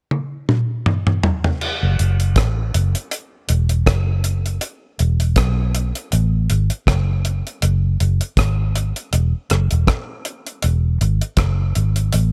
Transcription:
0.11 high tom
0.49 mid tom
0.86 mid tom
1.07 mid tom
1.23 floor tom
1.44 floor tom
1.61 crash
1.83 fingered electric bass F#1
1.99 fingered electric bass F#1, closed hi-hat
2.20 closed hi-hat
2.36 fingered electric bass A1, kick, cross-stick, closed hi-hat
2.74 fingered electric bass F#1, closed hi-hat
2.95 closed hi-hat
3.11 closed hi-hat
3.49 fingered electric bass E1, closed hi-hat
3.69 closed hi-hat
3.86 fingered electric bass F#1, kick, cross-stick, closed hi-hat
4.24 closed hi-hat
4.46 closed hi-hat
4.61 closed hi-hat
4.99 fingered electric bass E1, closed hi-hat
5.20 closed hi-hat
5.36 fingered electric bass B1, kick, cross-stick, closed hi-hat
5.75 closed hi-hat
5.95 closed hi-hat
6.12 fingered electric bass A1, closed hi-hat
6.50 fingered electric bass G#1, closed hi-hat
6.70 closed hi-hat
6.87 fingered electric bass F#1, kick, cross-stick, closed hi-hat
7.25 closed hi-hat
7.47 closed hi-hat
7.62 fingered electric bass F#1, closed hi-hat
8.00 fingered electric bass F#1, closed hi-hat
8.21 closed hi-hat
8.37 fingered electric bass G#1, kick, cross-stick, closed hi-hat
8.76 closed hi-hat
8.96 closed hi-hat
9.13 fingered electric bass E1, closed hi-hat
9.50 fingered electric bass F#1, cross-stick, closed hi-hat
9.71 fingered electric bass E1, closed hi-hat
9.87 kick, cross-stick, closed hi-hat
10.25 closed hi-hat
10.47 closed hi-hat
10.62 fingered electric bass E1, closed hi-hat
11.01 fingered electric bass G#1, closed hi-hat
11.21 closed hi-hat
11.37 fingered electric bass F#1, kick, cross-stick, closed hi-hat
11.75 fingered electric bass G#1, closed hi-hat
11.96 closed hi-hat
12.13 fingered electric bass A1, closed hi-hat

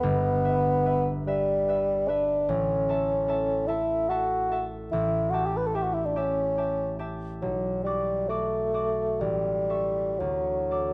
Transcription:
Already playing: harp B4 E5
0.00 harp G1, bassoon B3
0.45 harp B4 E5
0.86 harp B4 E5
1.27 bassoon G3, harp B4 E5
1.68 harp B4 E5
2.08 bassoon D4, harp B4 E5
2.49 harp A1, bassoon C#4
2.89 harp A4 E5 A5
3.28 harp A4 E5 A5
3.67 bassoon E4, harp A4 E5 A5
4.09 bassoon F#4, harp A4 E5 A5
4.51 harp A4 E5 A5
4.92 harp A1, bassoon E4
5.30 bassoon F#4, harp G4
5.34 harp E5 A5
5.46 bassoon G4
5.57 bassoon B4
5.67 bassoon A4
5.74 harp G4 E5 A5, bassoon G4
5.83 bassoon F#4
5.93 bassoon E4
6.05 bassoon D4
6.16 bassoon C#4, harp G4 E5 A5
6.58 harp G4 E5 A5
6.99 harp G4 E5 A5
7.42 harp B1, bassoon F#3
7.83 bassoon G3, harp F#4 D5 D6
8.29 bassoon A3, harp F#4 D5 D6
8.74 harp F#4 D5 D6
9.21 harp A1, bassoon G3
9.70 harp A4 E5 C#6
10.19 harp D2, bassoon F#3
10.71 harp A4 D5 D6

